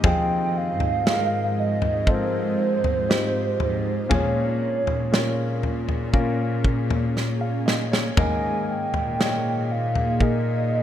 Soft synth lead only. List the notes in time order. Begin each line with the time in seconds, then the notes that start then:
0.06 G5
0.57 F5
1.60 D#5
2.10 C5
4.14 C#5
8.19 G#5
8.69 G5
9.72 F5
10.22 D#5